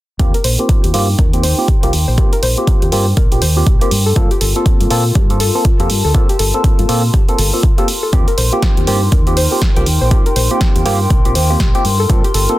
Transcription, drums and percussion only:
0.19 kick, closed hi-hat
0.34 closed hi-hat
0.44 open hi-hat
0.59 closed hi-hat
0.69 kick, closed hi-hat
0.84 closed hi-hat
0.94 open hi-hat
1.19 kick, closed hi-hat
1.33 closed hi-hat
1.43 open hi-hat
1.68 kick, closed hi-hat
1.83 closed hi-hat
1.93 open hi-hat
2.18 kick, closed hi-hat
2.33 closed hi-hat
2.43 open hi-hat
2.57 closed hi-hat
2.67 kick, closed hi-hat
2.82 closed hi-hat
2.92 open hi-hat
3.17 kick, closed hi-hat
3.32 closed hi-hat
3.42 open hi-hat
3.67 kick, closed hi-hat
3.81 closed hi-hat
3.91 open hi-hat
4.16 kick, closed hi-hat
4.31 closed hi-hat
4.41 open hi-hat
4.56 closed hi-hat
4.66 kick, closed hi-hat
4.80 closed hi-hat
4.90 open hi-hat
5.15 kick, closed hi-hat
5.30 closed hi-hat
5.40 open hi-hat
5.65 kick, closed hi-hat
5.80 closed hi-hat
5.90 open hi-hat
6.15 kick, closed hi-hat
6.29 closed hi-hat
6.39 open hi-hat
6.54 closed hi-hat
6.64 kick, closed hi-hat
6.79 closed hi-hat
6.89 open hi-hat
7.14 kick, closed hi-hat
7.28 closed hi-hat
7.38 open hi-hat
7.63 kick, closed hi-hat
7.78 closed hi-hat
7.88 open hi-hat
8.13 kick, closed hi-hat
8.28 closed hi-hat
8.38 open hi-hat
8.52 closed hi-hat
8.62 kick, snare, closed hi-hat
8.77 closed hi-hat
8.87 open hi-hat
9.12 kick, closed hi-hat
9.27 closed hi-hat
9.37 open hi-hat
9.62 kick, snare, closed hi-hat
9.76 closed hi-hat
9.86 open hi-hat
10.11 kick, closed hi-hat
10.26 closed hi-hat
10.36 open hi-hat
10.61 kick, snare, closed hi-hat
10.76 closed hi-hat
10.86 open hi-hat
11.10 kick, closed hi-hat
11.25 closed hi-hat
11.35 open hi-hat
11.60 kick, snare, closed hi-hat
11.75 closed hi-hat
11.85 open hi-hat
12.10 kick, closed hi-hat
12.24 closed hi-hat
12.34 open hi-hat
12.49 closed hi-hat

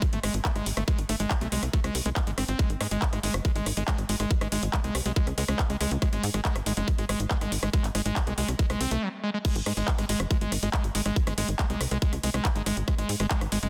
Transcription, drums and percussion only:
0.02 kick, cross-stick, closed hi-hat
0.13 closed hi-hat
0.23 cross-stick, open hi-hat
0.34 closed hi-hat
0.45 kick, clap, closed hi-hat
0.56 cross-stick, closed hi-hat
0.66 open hi-hat
0.77 cross-stick, closed hi-hat
0.88 kick, closed hi-hat
0.98 closed hi-hat
1.09 cross-stick, open hi-hat
1.20 closed hi-hat
1.31 kick, cross-stick, clap, closed hi-hat
1.41 closed hi-hat
1.52 open hi-hat
1.63 cross-stick, closed hi-hat
1.73 kick, closed hi-hat
1.84 cross-stick, closed hi-hat
1.95 open hi-hat
2.06 closed hi-hat
2.16 kick, cross-stick, clap, closed hi-hat
2.27 closed hi-hat
2.38 cross-stick, open hi-hat
2.48 closed hi-hat
2.59 kick, cross-stick, closed hi-hat
2.70 closed hi-hat
2.81 cross-stick, open hi-hat
2.91 closed hi-hat
3.02 kick, clap, closed hi-hat
3.13 cross-stick, closed hi-hat
3.23 open hi-hat
3.34 cross-stick, closed hi-hat
3.45 kick, closed hi-hat
3.56 closed hi-hat
3.66 cross-stick, open hi-hat
3.77 closed hi-hat
3.88 kick, cross-stick, clap, closed hi-hat
3.98 closed hi-hat
4.09 open hi-hat
4.20 cross-stick, closed hi-hat
4.31 kick, closed hi-hat
4.41 cross-stick, closed hi-hat
4.52 open hi-hat
4.63 closed hi-hat
4.73 kick, cross-stick, clap, closed hi-hat
4.84 closed hi-hat
4.95 cross-stick, open hi-hat
5.06 closed hi-hat
5.16 kick, closed hi-hat
5.27 cross-stick, closed hi-hat
5.38 open hi-hat
5.48 cross-stick, closed hi-hat
5.59 kick, clap, closed hi-hat
5.70 closed hi-hat
5.81 cross-stick, open hi-hat
5.91 closed hi-hat
6.02 kick, cross-stick, closed hi-hat
6.13 closed hi-hat
6.23 open hi-hat
6.34 cross-stick, closed hi-hat
6.45 kick, clap, closed hi-hat
6.56 cross-stick, closed hi-hat
6.66 open hi-hat
6.77 closed hi-hat
6.88 kick, cross-stick, closed hi-hat
6.98 closed hi-hat
7.09 cross-stick, open hi-hat
7.20 closed hi-hat
7.31 kick, clap, closed hi-hat
7.41 cross-stick, closed hi-hat
7.52 open hi-hat
7.63 cross-stick, closed hi-hat
7.73 kick, closed hi-hat
7.84 clap, closed hi-hat
7.95 cross-stick, open hi-hat
8.06 closed hi-hat
8.16 kick, cross-stick, clap, closed hi-hat
8.27 closed hi-hat
8.38 open hi-hat
8.48 cross-stick, closed hi-hat
8.59 kick, closed hi-hat
8.70 cross-stick, closed hi-hat
8.81 open hi-hat
8.91 closed hi-hat
9.45 kick, cross-stick, closed hi-hat, crash
9.56 closed hi-hat
9.66 cross-stick, open hi-hat
9.77 closed hi-hat
9.88 kick, clap, closed hi-hat
9.98 cross-stick, closed hi-hat
10.09 open hi-hat
10.20 cross-stick, closed hi-hat
10.31 kick, closed hi-hat
10.41 closed hi-hat
10.52 cross-stick, open hi-hat
10.63 closed hi-hat
10.73 kick, cross-stick, clap, closed hi-hat
10.84 closed hi-hat
10.95 open hi-hat
11.06 cross-stick, closed hi-hat
11.16 kick, closed hi-hat
11.27 cross-stick, closed hi-hat
11.38 open hi-hat
11.48 closed hi-hat
11.59 kick, cross-stick, clap, closed hi-hat
11.70 closed hi-hat
11.81 cross-stick, open hi-hat
11.91 closed hi-hat
12.02 kick, closed hi-hat
12.13 cross-stick, closed hi-hat
12.23 open hi-hat
12.34 cross-stick, closed hi-hat
12.45 kick, clap, closed hi-hat
12.56 closed hi-hat
12.66 cross-stick, open hi-hat
12.77 closed hi-hat
12.88 kick, cross-stick, closed hi-hat
12.98 closed hi-hat
13.09 open hi-hat
13.20 cross-stick, closed hi-hat
13.31 kick, clap, closed hi-hat
13.41 cross-stick, closed hi-hat
13.52 open hi-hat
13.63 closed hi-hat

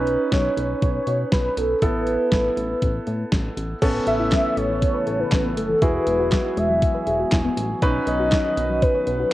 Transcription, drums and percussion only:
0.07 closed hi-hat
0.32 kick, snare, closed hi-hat
0.57 closed hi-hat
0.82 kick, closed hi-hat
1.07 closed hi-hat
1.32 kick, snare, closed hi-hat
1.57 closed hi-hat
1.82 kick, closed hi-hat
2.07 closed hi-hat
2.32 kick, snare, closed hi-hat
2.57 closed hi-hat
2.82 kick, closed hi-hat
3.07 closed hi-hat
3.32 kick, snare, closed hi-hat
3.57 closed hi-hat
3.82 kick, closed hi-hat, crash
4.07 closed hi-hat
4.32 kick, snare, clap, closed hi-hat
4.57 closed hi-hat
4.82 kick, closed hi-hat
5.07 closed hi-hat
5.32 kick, snare, clap, closed hi-hat
5.57 closed hi-hat
5.82 kick, closed hi-hat
6.07 closed hi-hat
6.32 kick, snare, clap, closed hi-hat
6.57 closed hi-hat
6.82 kick, closed hi-hat
7.07 closed hi-hat
7.32 kick, snare, clap, closed hi-hat
7.57 closed hi-hat
7.82 kick, closed hi-hat
8.07 closed hi-hat
8.32 kick, snare, clap, closed hi-hat
8.57 closed hi-hat
8.82 kick, closed hi-hat
9.07 closed hi-hat

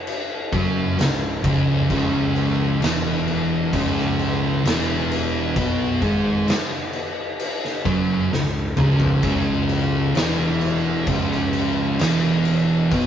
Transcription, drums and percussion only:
0.07 crash
0.53 kick, crash
0.99 snare, crash
1.44 kick, crash
1.90 kick, crash
2.36 crash
2.82 snare, crash
3.28 crash
3.73 kick, crash
3.98 snare
4.19 crash
4.65 snare, crash
5.12 crash
5.56 kick, crash
6.02 kick, crash
6.48 snare, crash
6.93 crash
7.40 crash
7.65 snare
7.85 kick, crash
8.33 snare
8.77 mid tom
9.00 floor tom
9.23 kick, crash
9.69 crash
10.15 snare, crash
10.61 crash
11.07 kick, crash
11.32 snare
11.53 crash
11.99 snare, crash
12.45 crash
12.91 kick, crash

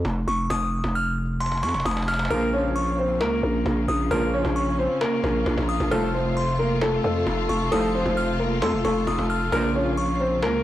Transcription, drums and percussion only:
0.05 cajon bass
0.28 cajon slap
0.50 cajon bass
0.73 cajon slap
0.78 cajon slap
0.84 cajon bass
0.90 cajon slap
0.95 cajon slap
1.18 cajon slap
1.25 cajon slap
1.33 cajon slap
1.40 cajon slap
1.46 cajon slap
1.48 cajon slap
1.52 cajon slap
1.55 cajon slap
1.57 cajon slap
1.63 cajon slap
1.69 cajon slap
1.70 cajon slap
1.74 cajon slap
1.78 cajon slap
1.80 cajon slap
1.85 cajon bass, cajon slap
1.91 cajon slap
1.97 cajon slap
2.02 cajon slap
2.08 cajon slap
2.14 cajon slap
2.19 cajon slap
2.25 cajon slap
2.31 cajon bass
2.53 cajon slap
2.61 cajon slap
2.68 cajon slap
2.76 cajon slap
2.98 cajon slap
3.06 cajon slap
3.13 cajon slap
3.21 cajon slap
3.43 cajon slap
3.66 cajon bass
3.89 cajon slap
4.11 cajon bass
4.33 cajon slap
4.45 cajon bass
4.56 cajon slap
4.79 cajon slap
4.86 cajon slap
4.94 cajon slap
5.01 cajon slap
5.09 cajon slap
5.16 cajon slap
5.24 cajon bass
5.29 cajon slap
5.35 cajon slap
5.41 cajon slap
5.46 cajon bass
5.52 cajon slap
5.58 cajon bass
5.63 cajon slap
5.69 cajon slap
5.80 cajon bass
5.91 cajon bass
6.14 cajon slap
6.22 cajon slap
6.29 cajon slap
6.37 cajon slap
6.59 cajon slap
6.67 cajon slap
6.74 cajon slap
6.81 cajon slap
7.04 cajon slap
7.27 cajon bass
7.49 cajon slap
7.72 cajon bass
8.00 cajon slap
8.06 cajon bass
8.11 cajon slap
8.17 cajon slap
8.40 cajon slap
8.47 cajon slap
8.55 cajon slap
8.62 cajon slap
8.70 cajon slap
8.77 cajon slap
8.85 cajon bass
8.92 cajon slap
9.00 cajon slap
9.07 cajon bass
9.13 cajon slap
9.18 cajon bass
9.24 cajon slap
9.52 cajon bass
9.75 cajon slap
9.82 cajon slap
9.90 cajon slap
9.98 cajon slap
10.20 cajon slap
10.28 cajon slap
10.35 cajon slap
10.42 cajon slap

